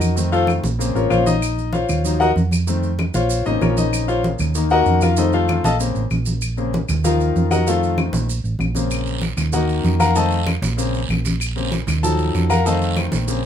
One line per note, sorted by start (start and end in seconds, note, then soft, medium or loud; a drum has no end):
0.00 0.58 F2 medium
0.00 0.30 D#4 medium
0.00 0.15 F#4 medium
0.00 0.15 A#4 medium
0.00 0.29 D#5 medium
0.00 high conga medium
0.00 claves medium
0.00 maracas medium
0.16 0.61 D#3 medium
0.16 0.61 A3 soft
0.16 0.62 C4 medium
0.16 maracas medium
0.32 0.48 F4 medium
0.32 0.48 A4 medium
0.32 0.48 C5 medium
0.32 0.48 F5 loud
0.32 high conga soft
0.32 maracas soft
0.47 high conga medium
0.47 claves medium
0.47 maracas soft
0.64 0.93 A#1 loud
0.64 high conga medium
0.64 maracas medium
0.79 1.24 C#3 medium
0.79 1.24 A#3 medium
0.79 1.25 C4 medium
0.79 high conga soft
0.79 maracas medium
0.95 1.10 A1 medium
0.95 1.11 C#4 medium
0.95 1.09 F4 medium
0.95 1.11 A#4 medium
0.95 1.09 C#5 medium
0.95 high conga soft
0.95 maracas soft
1.10 1.84 A#1 medium
1.10 1.26 F4 medium
1.10 1.26 C5 medium
1.10 1.26 C#5 medium
1.10 1.26 F5 loud
1.10 high conga medium
1.10 claves medium
1.10 maracas soft
1.26 1.71 D#4 medium
1.26 1.70 D#5 medium
1.26 high conga medium
1.26 maracas medium
1.42 claves medium
1.42 maracas medium
1.58 high conga soft
1.58 maracas soft
1.73 2.17 F4 medium
1.73 2.17 C5 medium
1.73 2.17 C#5 medium
1.73 2.17 F5 medium
1.73 high conga loud
1.73 maracas soft
1.89 2.33 D#2 medium
1.89 high conga soft
1.89 low conga medium
1.89 claves medium
1.89 maracas medium
2.04 2.25 F3 medium
2.04 2.26 F#3 medium
2.04 2.26 D#4 medium
2.04 high conga soft
2.04 maracas medium
2.20 2.30 F#4 medium
2.20 2.30 A#4 medium
2.20 2.30 D#5 medium
2.20 2.30 F#5 loud
2.20 high conga soft
2.20 maracas soft
2.36 3.09 F2 medium
2.36 high conga medium
2.36 maracas soft
2.51 high conga medium
2.51 claves medium
2.51 maracas medium
2.67 2.88 D#3 medium
2.67 2.89 A3 medium
2.67 2.89 C4 medium
2.67 maracas medium
2.83 high conga soft
2.83 maracas soft
2.99 high conga medium
2.99 claves medium
2.99 maracas soft
3.14 3.44 A#1 loud
3.14 3.44 F4 medium
3.14 3.44 C5 medium
3.14 3.44 C#5 medium
3.14 3.44 F5 medium
3.14 high conga loud
3.14 maracas medium
3.30 high conga soft
3.30 maracas medium
3.45 3.61 A1 medium
3.45 4.51 C#3 medium
3.45 4.51 A#3 medium
3.45 4.51 C4 medium
3.45 3.61 D#4 medium
3.45 3.61 D#5 medium
3.45 high conga soft
3.45 maracas soft
3.61 4.34 A#1 medium
3.61 3.77 C#4 medium
3.61 3.77 F4 medium
3.61 3.77 A#4 medium
3.61 3.77 C#5 medium
3.61 high conga medium
3.61 claves medium
3.61 maracas soft
3.77 4.07 D#4 medium
3.77 4.06 D#5 medium
3.77 high conga medium
3.77 maracas medium
3.93 high conga soft
3.93 claves medium
3.93 maracas medium
4.08 4.24 F4 medium
4.08 4.23 C5 medium
4.08 4.24 C#5 medium
4.08 4.23 F5 loud
4.08 high conga soft
4.08 maracas soft
4.24 high conga medium
4.24 maracas soft
4.39 4.83 D#2 loud
4.39 high conga soft
4.39 low conga medium
4.39 claves medium
4.39 maracas medium
4.55 5.14 D#3 medium
4.55 5.15 A#3 medium
4.55 5.15 D#4 medium
4.55 high conga soft
4.55 maracas medium
4.70 5.00 F#4 medium
4.70 5.00 A#4 loud
4.70 5.00 D#5 loud
4.70 5.00 F#5 loud
4.70 high conga soft
4.70 maracas soft
4.86 5.59 F2 medium
4.86 high conga medium
4.86 maracas soft
5.01 5.17 F4 medium
5.01 5.18 A#4 medium
5.01 5.17 F5 medium
5.01 high conga medium
5.01 claves medium
5.01 maracas medium
5.17 5.62 D#3 medium
5.17 5.62 A3 medium
5.17 5.62 C4 medium
5.17 5.33 D#4 medium
5.17 5.33 A4 medium
5.17 5.33 C5 medium
5.17 5.33 D#5 medium
5.17 high conga soft
5.17 maracas medium
5.32 5.63 F4 medium
5.32 5.63 A4 medium
5.32 5.63 C5 medium
5.32 5.62 F5 loud
5.32 high conga soft
5.32 maracas soft
5.48 high conga loud
5.48 claves medium
5.48 maracas soft
5.64 5.93 A#1 loud
5.64 5.74 A4 medium
5.64 5.74 D#5 medium
5.64 5.74 F5 medium
5.64 5.74 A5 loud
5.64 high conga loud
5.64 maracas medium
5.79 6.00 C#3 medium
5.79 6.01 A#3 medium
5.79 6.01 C4 medium
5.79 maracas medium
5.95 6.10 A1 medium
5.95 high conga soft
5.95 maracas soft
6.11 6.83 A#1 medium
6.11 high conga medium
6.11 claves medium
6.11 maracas soft
6.26 high conga medium
6.26 maracas medium
6.41 high conga soft
6.41 claves medium
6.41 maracas medium
6.57 6.72 C#3 medium
6.57 6.72 A#3 medium
6.57 6.72 C4 medium
6.57 high conga soft
6.57 maracas soft
6.74 high conga loud
6.74 maracas soft
6.89 7.32 D#2 loud
6.89 high conga soft
6.89 low conga medium
6.89 claves medium
6.89 maracas medium
7.04 7.64 D#3 medium
7.04 7.63 F3 medium
7.04 7.64 D#4 medium
7.04 7.48 F4 medium
7.04 7.48 A#4 medium
7.04 7.48 F5 medium
7.04 high conga soft
7.04 low conga medium
7.04 maracas medium
7.20 high conga soft
7.20 maracas soft
7.36 8.08 F2 medium
7.36 high conga medium
7.36 maracas soft
7.51 7.66 F#4 medium
7.51 7.66 A#4 medium
7.51 7.66 D#5 medium
7.51 7.66 F#5 loud
7.51 high conga medium
7.51 claves medium
7.51 maracas medium
7.67 8.26 D#3 medium
7.67 8.26 A3 medium
7.67 8.27 C4 medium
7.67 7.96 F4 medium
7.67 7.96 A4 medium
7.67 7.96 C5 medium
7.67 7.96 F5 medium
7.67 high conga soft
7.67 maracas medium
7.83 high conga soft
7.83 maracas soft
7.98 high conga loud
7.98 claves medium
7.98 maracas soft
8.13 8.42 A#1 loud
8.13 high conga loud
8.13 maracas medium
8.29 maracas medium
8.44 8.59 A1 medium
8.44 high conga soft
8.44 maracas soft
8.59 9.32 A#1 medium
8.59 high conga medium
8.59 claves medium
8.59 maracas soft
8.75 9.20 C#3 medium
8.75 9.20 A#3 medium
8.75 9.20 C4 medium
8.75 high conga medium
8.75 maracas medium
8.91 high conga soft
8.91 long guiro medium
8.91 claves medium
8.91 maracas medium
9.06 high conga soft
9.06 maracas soft
9.21 high conga medium
9.21 short guiro medium
9.21 maracas soft
9.37 9.81 D#2 loud
9.37 high conga soft
9.37 low conga medium
9.37 short guiro medium
9.37 claves medium
9.37 maracas medium
9.53 10.12 D#3 medium
9.53 10.13 A#3 medium
9.53 10.13 D#4 medium
9.53 9.97 F#4 medium
9.53 9.97 A#4 medium
9.53 9.97 D#5 medium
9.53 9.97 F#5 medium
9.53 high conga soft
9.53 low conga medium
9.53 long guiro medium
9.53 maracas medium
9.69 high conga soft
9.69 maracas soft
9.84 10.57 F2 medium
9.84 high conga medium
9.84 short guiro medium
9.84 maracas soft
10.00 10.15 A#4 medium
10.00 10.15 F5 medium
10.00 10.15 F#5 medium
10.00 10.15 A#5 loud
10.00 high conga medium
10.00 short guiro medium
10.00 claves medium
10.00 maracas medium
10.15 10.36 D#3 medium
10.15 10.37 A3 medium
10.15 10.37 C4 medium
10.15 10.45 A4 medium
10.15 10.45 D#5 medium
10.15 10.45 F5 medium
10.15 10.45 A5 medium
10.15 long guiro medium
10.15 maracas medium
10.32 maracas soft
10.46 high conga loud
10.46 short guiro medium
10.46 claves medium
10.46 maracas soft
10.62 11.06 A#1 loud
10.62 high conga loud
10.62 short guiro medium
10.62 maracas medium
10.77 10.98 C#3 medium
10.77 10.99 A#3 medium
10.77 10.99 C4 medium
10.77 high conga soft
10.77 long guiro medium
10.77 maracas medium
10.94 high conga soft
10.94 maracas soft
11.09 11.82 A#1 medium
11.09 high conga medium
11.09 short guiro medium
11.09 claves medium
11.09 maracas soft
11.25 high conga medium
11.25 short guiro medium
11.25 maracas medium
11.40 high conga soft
11.40 long guiro medium
11.40 claves medium
11.40 maracas medium
11.56 11.70 C#3 medium
11.56 11.70 A#3 medium
11.56 11.70 C4 medium
11.56 high conga soft
11.56 maracas soft
11.72 high conga loud
11.72 short guiro medium
11.72 maracas soft
11.87 12.31 D#2 loud
11.87 high conga soft
11.87 low conga medium
11.87 short guiro medium
11.87 claves medium
11.87 maracas medium
12.03 12.47 F3 medium
12.03 12.48 F#3 medium
12.03 12.48 D#4 medium
12.03 12.47 A4 medium
12.03 12.47 A5 loud
12.03 high conga soft
12.03 low conga medium
12.03 long guiro medium
12.03 maracas loud
12.19 high conga soft
12.19 maracas soft
12.34 13.07 F2 medium
12.34 high conga medium
12.34 short guiro medium
12.34 maracas soft
12.50 12.65 A#4 medium
12.50 12.65 F5 medium
12.50 12.65 F#5 medium
12.50 12.65 A#5 loud
12.50 high conga medium
12.50 short guiro medium
12.50 claves medium
12.50 maracas medium
12.65 13.25 D#3 medium
12.65 13.25 A3 medium
12.65 13.25 C4 medium
12.65 12.95 A4 medium
12.65 12.95 D#5 medium
12.65 12.95 F5 medium
12.65 12.95 A5 medium
12.65 high conga soft
12.65 long guiro medium
12.65 maracas medium
12.80 high conga soft
12.80 maracas soft
12.96 high conga loud
12.96 short guiro medium
12.96 claves medium
12.96 maracas soft
13.12 13.46 A#1 medium
13.12 high conga loud
13.12 short guiro medium
13.12 maracas medium
13.28 13.46 C#3 medium
13.28 13.46 A#3 medium
13.28 13.46 C4 medium
13.28 high conga soft
13.28 long guiro medium
13.28 maracas medium